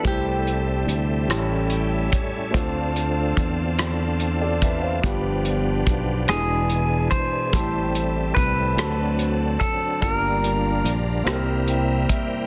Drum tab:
HH |xxxxxx|xxxxxx|xxxxxx|xxxxxx|
SD |---r--|---r--|---r--|---r--|
BD |o----o|o-o--o|o-o--o|o-o--o|

HH |xxxxxx|
SD |---r--|
BD |o----o|